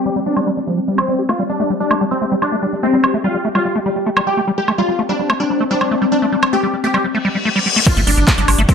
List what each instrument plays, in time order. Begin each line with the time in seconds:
Already playing: synth texture G3 C4, supersaw synth G4
0.06 acid bass G3
0.16 acid bass G3
0.26 acid bass G3, supersaw synth D4
0.37 acid bass G3, high woodblock
0.47 acid bass G3
0.57 acid bass G3
0.67 acid bass F3
0.78 acid bass G3
0.88 acid bass G3
0.98 acid bass F3, supersaw synth C4, high woodblock
1.08 acid bass G3
1.19 acid bass G4
1.29 acid bass A3, supersaw synth F4, synth texture G4, high woodblock
1.39 acid bass G3
1.50 acid bass G3, supersaw synth D4
1.60 acid bass A3
1.70 acid bass G3
1.80 acid bass G3, supersaw synth D4
1.91 acid bass A3, high woodblock
2.01 acid bass G3
2.11 acid bass G3, supersaw synth C4
2.22 acid bass A3
2.32 acid bass G3
2.42 acid bass G3, supersaw synth D4, high woodblock
2.52 acid bass A3
2.63 acid bass G3
2.73 acid bass G3
2.83 acid bass A3, supersaw synth C4
2.93 acid bass G3
3.04 acid bass G3, high woodblock
3.14 acid bass A3
3.24 acid bass G3, supersaw synth F4
3.34 acid bass G3
3.45 acid bass A3
3.55 acid bass G3, supersaw synth F4, high woodblock
3.65 acid bass G3
3.76 acid bass A3
3.86 acid bass G3
3.96 acid bass G3
4.06 acid bass A3
4.17 acid bass G3, high woodblock
4.27 acid bass G3, supersaw synth G4
4.37 acid bass A3
4.47 acid bass G3
4.58 acid bass G3, synth texture C4, supersaw synth G4
4.68 acid bass A3, high woodblock
4.78 acid bass G3, supersaw synth F4
4.89 acid bass G3
4.99 acid bass A3
5.09 acid bass G3, supersaw synth D4
5.19 acid bass G3
5.30 acid bass A3, high woodblock
5.40 acid bass G3, supersaw synth D4
5.50 acid bass G3
5.61 acid bass A3
5.71 acid bass G3, supersaw synth D4
5.81 acid bass G3, high woodblock
5.91 acid bass A3
6.02 acid bass G3
6.12 acid bass G3, supersaw synth D4
6.22 acid bass A3
6.32 acid bass G3
6.43 acid bass G3, high woodblock
6.53 acid bass A3, supersaw synth G4
6.63 acid bass G3
6.74 acid bass G3
6.84 acid bass A3, supersaw synth G4
6.94 acid bass G3, high woodblock
7.04 acid bass G3, reverse cymbal
7.15 acid bass A3
7.25 acid bass G3
7.35 acid bass G3
7.45 acid bass A3
7.56 acid bass G3
7.66 acid bass G3
7.76 acid bass A3
7.87 acid bass G3, synth texture G3 G4, supersaw synth F4, kick, closed hi-hat, crash, impact, high woodblock
7.97 analog synth bass G1, acid bass A3, closed hi-hat
8.07 analog synth bass G1, acid bass G3, supersaw synth D4, open hi-hat
8.17 analog synth bass G1, acid bass G3, closed hi-hat
8.28 acid bass A3, kick, clap, closed hi-hat
8.38 analog synth bass G1, acid bass G3, supersaw synth D4, closed hi-hat
8.48 analog synth bass G1, acid bass G3, open hi-hat, high woodblock
8.58 analog synth bass G1, acid bass A3, closed hi-hat
8.69 acid bass G3, supersaw synth C4, kick, closed hi-hat